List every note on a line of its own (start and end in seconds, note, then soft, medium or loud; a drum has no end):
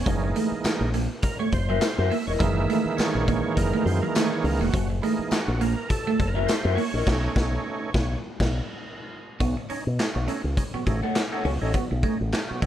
0.00 0.32 C#4 medium
0.06 0.32 F#1 loud
0.06 0.90 E3 medium
0.06 0.16 F#3 medium
0.06 0.90 G#3 medium
0.06 0.90 A#3 medium
0.06 0.90 D#4 medium
0.06 kick loud
0.06 closed hi-hat loud
0.24 muted clean electric guitar stroke soft
0.36 0.46 A3 medium
0.36 closed hi-hat medium
0.52 muted fingered electric bass stroke soft
0.64 muted fingered electric bass stroke medium
0.64 snare loud
0.64 clap medium
0.64 closed hi-hat medium
0.64 tambourine loud
0.81 1.06 A#1 medium
0.94 1.04 A#3 medium
0.94 closed hi-hat medium
1.22 1.38 A#4 loud
1.22 kick loud
1.22 closed hi-hat loud
1.39 1.48 A3 medium
1.39 1.53 C#5 loud
1.52 1.78 F#1 medium
1.52 2.13 C5 medium
1.52 muted clean electric guitar stroke soft
1.52 kick medium
1.52 closed hi-hat medium
1.69 1.77 F#3 medium
1.69 1.83 E4 medium
1.69 1.83 A#4 medium
1.69 1.82 E5 medium
1.81 snare loud
1.81 clap loud
1.81 closed hi-hat medium
1.81 tambourine loud
1.98 2.09 F#2 medium
1.98 2.12 E4 medium
1.98 2.12 A#4 medium
1.98 2.12 E5 medium
2.10 2.21 A#3 medium
2.10 2.26 E5 medium
2.10 open hi-hat medium
2.27 2.38 E1 medium
2.27 2.39 E4 soft
2.27 2.38 A#4 medium
2.27 2.33 C#5 medium
2.27 2.38 D#5 medium
2.39 2.66 F#1 medium
2.39 4.70 D#3 medium
2.39 4.69 E3 medium
2.39 2.51 F#3 medium
2.39 4.69 G#3 medium
2.39 4.70 A#3 medium
2.39 3.00 E5 loud
2.39 kick loud
2.39 closed hi-hat medium
2.58 muted clean electric guitar stroke soft
2.70 2.80 A3 medium
2.70 closed hi-hat medium
2.85 muted fingered electric bass stroke medium
2.97 3.58 C#5 loud
2.97 muted fingered electric bass stroke medium
2.97 snare medium
2.97 clap medium
2.97 closed hi-hat medium
2.97 tambourine loud
3.15 3.40 A#1 medium
3.28 3.38 A#3 medium
3.28 kick loud
3.28 closed hi-hat medium
3.56 3.71 F#1 loud
3.56 3.86 A#4 loud
3.56 kick loud
3.56 closed hi-hat loud
3.74 3.81 A3 medium
3.85 4.00 F#2 loud
3.85 4.01 C5 medium
3.85 muted clean electric guitar stroke soft
3.85 closed hi-hat medium
4.01 4.10 F#3 medium
4.01 4.15 A#4 medium
4.15 4.26 A3 medium
4.15 4.45 C#5 medium
4.15 snare loud
4.15 clap loud
4.15 closed hi-hat loud
4.15 tambourine medium
4.44 4.58 C#2 loud
4.44 4.61 A#4 medium
4.44 muted clean electric guitar stroke soft
4.44 open hi-hat medium
4.60 4.72 E1 medium
4.60 4.69 A#3 medium
4.60 4.88 F#4 medium
4.74 4.99 F#1 loud
4.74 4.83 F#3 medium
4.74 kick loud
4.74 closed hi-hat medium
4.90 muted clean electric guitar stroke soft
5.02 5.43 E3 medium
5.02 5.43 G#3 medium
5.02 5.13 A3 medium
5.02 5.43 A#3 medium
5.02 5.44 D#4 medium
5.02 closed hi-hat medium
5.19 muted fingered electric bass stroke soft
5.31 5.62 F#4 medium
5.31 muted fingered electric bass stroke soft
5.31 snare medium
5.31 clap medium
5.31 closed hi-hat medium
5.31 tambourine medium
5.48 5.74 A#1 loud
5.61 5.71 A#3 medium
5.61 5.91 A#4 medium
5.61 closed hi-hat medium
5.89 6.30 A4 loud
5.89 kick loud
5.89 closed hi-hat loud
6.07 6.15 A3 medium
6.20 6.45 F#1 medium
6.20 muted clean electric guitar stroke soft
6.20 kick medium
6.20 closed hi-hat medium
6.27 6.48 A#4 medium
6.35 6.44 F#3 medium
6.35 6.50 E4 medium
6.35 6.49 A#4 medium
6.35 6.49 E5 medium
6.47 6.75 C5 medium
6.47 snare loud
6.47 clap medium
6.47 closed hi-hat loud
6.47 tambourine loud
6.65 6.76 F#2 loud
6.65 6.79 E4 medium
6.65 6.79 A#4 medium
6.65 6.78 E5 medium
6.75 6.87 A#3 medium
6.75 8.19 C#5 loud
6.75 open hi-hat medium
6.94 7.05 A#1 medium
6.94 7.05 E4 medium
6.94 7.05 A#4 medium
6.94 7.05 D#5 medium
7.06 7.27 B1 loud
7.06 7.90 A3 medium
7.06 7.90 C#4 medium
7.06 7.91 D#4 medium
7.06 kick loud
7.06 snare loud
7.06 crash medium
7.36 7.56 B1 loud
7.36 kick loud
7.36 snare loud
7.94 8.15 B1 loud
7.94 kick loud
7.94 snare loud
8.40 8.59 B1 loud
8.40 kick loud
8.40 snare loud
8.40 crash medium
9.40 9.55 B1 loud
9.40 9.55 B2 medium
9.40 9.55 F#3 medium
9.40 9.50 B3 medium
9.40 kick loud
9.40 closed hi-hat loud
9.57 muted clean electric guitar stroke soft
9.70 9.84 C#4 medium
9.70 9.80 C#4 medium
9.70 9.84 D#4 medium
9.70 muted fingered electric bass stroke soft
9.70 closed hi-hat medium
9.87 9.98 B2 medium
9.99 10.06 C#4 soft
9.99 10.06 D#4 soft
9.99 snare loud
9.99 clap medium
9.99 closed hi-hat medium
10.15 10.27 B1 medium
10.15 10.26 B2 medium
10.15 10.26 F#3 medium
10.27 10.42 A3 medium
10.27 10.38 C#4 medium
10.27 10.42 C#4 medium
10.27 10.42 D#4 medium
10.27 closed hi-hat medium
10.44 10.56 C#2 medium
10.57 10.64 C#4 soft
10.57 10.64 D#4 soft
10.57 kick medium
10.57 closed hi-hat loud
10.74 10.85 B2 medium
10.74 10.85 F#3 medium
10.74 10.82 B3 medium
10.74 muted fingered electric bass stroke soft
10.86 11.01 A1 medium
10.86 11.01 A3 medium
10.86 11.01 C#4 medium
10.86 11.01 D#4 medium
10.86 muted clean electric guitar stroke soft
10.86 kick medium
10.86 closed hi-hat medium
11.03 11.11 A3 medium
11.03 11.17 A4 medium
11.03 11.17 C#5 medium
11.03 11.17 F#5 medium
11.15 snare loud
11.15 clap medium
11.15 closed hi-hat medium
11.32 11.43 A3 medium
11.32 11.43 C#4 medium
11.32 11.44 D#4 medium
11.32 11.46 A4 medium
11.32 11.46 C#5 medium
11.32 11.46 F#5 medium
11.45 11.59 C#2 loud
11.45 11.60 B2 medium
11.45 11.60 F#3 soft
11.45 11.55 C#4 medium
11.45 open hi-hat medium
11.61 11.73 A1 medium
11.61 11.73 A3 medium
11.61 11.73 C#4 medium
11.61 11.73 D#4 medium
11.61 11.73 A4 medium
11.61 11.73 C#5 medium
11.61 11.72 D#5 medium
11.74 11.88 B2 medium
11.74 11.88 F#3 medium
11.74 11.85 B3 medium
11.74 kick loud
11.74 closed hi-hat medium
11.91 12.02 B1 medium
11.91 muted clean electric guitar stroke soft
12.03 12.14 A3 medium
12.03 12.18 C#4 medium
12.03 12.18 D#4 medium
12.03 kick loud
12.03 closed hi-hat medium
12.21 12.32 A1 medium
12.32 12.40 C#4 soft
12.32 12.40 D#4 soft
12.32 snare loud
12.32 clap medium
12.32 closed hi-hat medium
12.49 12.61 B2 medium
12.49 12.61 F#3 medium
12.49 muted fingered electric bass stroke soft
12.62 12.66 B1 medium
12.62 12.66 A3 medium
12.62 12.66 B3 medium
12.62 12.66 C#4 medium
12.62 12.66 D#4 medium
12.62 kick loud
12.62 closed hi-hat medium